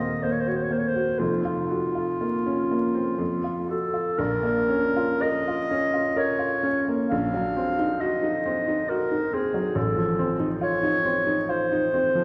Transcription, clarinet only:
0.00 0.24 D#5 medium
0.23 0.33 C5 medium
0.32 0.42 C#5 medium
0.40 0.49 C5 medium
0.48 0.57 C#5 medium
0.56 0.65 C5 medium
0.63 0.74 C#5 medium
0.73 0.80 C5 medium
0.79 0.90 C#5 medium
0.88 1.20 C5 medium
1.19 3.69 F4 medium
3.70 4.20 A4 medium
4.18 5.23 A#4 loud
5.22 6.19 D#5 loud
6.18 6.93 C#5 medium
7.10 8.02 F5 loud
8.01 8.91 D#5 medium
8.90 9.35 A#4 loud
9.34 9.78 G#4 medium
9.77 10.37 A4 medium
10.63 11.51 C#5 loud
11.50 12.24 C5 medium

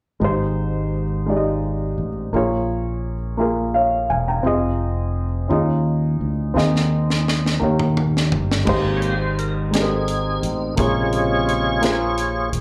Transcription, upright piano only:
0.20 1.24 G#2 soft
0.20 1.01 G#3 medium
0.20 1.02 D#4 soft
0.20 1.02 G4 soft
0.24 1.03 C5 medium
1.26 2.07 G#3 soft
1.26 2.08 D#4 soft
1.26 2.08 G4 soft
1.26 1.35 D5 soft
1.37 2.12 D#5 medium
2.33 3.36 A#2 soft
2.33 3.13 A#3 medium
2.33 3.14 F4 soft
2.33 3.15 G#4 soft
2.33 3.15 C#5 medium
3.37 4.18 A#3 soft
3.37 4.19 F4 soft
3.37 4.20 G#4 soft
3.37 4.20 A#4 medium
3.74 4.09 C#5 soft
3.74 4.08 F5 medium
4.10 4.27 F5 soft
4.10 4.43 G#5 soft
4.28 4.61 G5 soft
4.28 4.61 A#5 soft
4.43 5.24 C4 medium
4.43 5.25 F4 soft
4.43 5.26 G#4 medium
4.43 5.26 D#5 medium
5.48 6.30 C#4 soft
5.48 6.52 D#4 soft
5.48 6.30 F4 soft
5.48 6.31 G#4 soft
5.52 6.32 D#5 medium
6.54 7.58 D#3 soft
6.54 7.35 C4 medium
6.54 7.36 D#4 soft
6.54 7.36 G#4 medium
6.54 7.37 D#5 medium
7.59 8.63 D#3 soft
7.59 8.41 A#3 soft
7.59 8.41 D#4 soft
7.59 8.42 G4 soft
7.59 8.42 C#5 medium
8.65 9.69 G#2 soft
8.65 9.46 G#3 medium
8.65 9.47 D#4 medium
8.65 9.47 G4 medium
8.65 9.48 C5 medium
9.71 10.51 G#3 soft
9.71 10.52 D#4 soft
9.71 10.53 G4 soft
9.75 9.80 A4 soft
9.81 10.57 A#4 medium
10.76 11.79 A#2 soft
10.76 11.57 A#3 medium
10.76 11.57 F4 soft
10.76 11.58 G#4 soft
10.76 11.59 C#5 medium
11.81 12.61 A#3 medium
11.81 12.61 F4 soft
11.81 12.61 G#4 medium
11.81 12.61 C5 medium

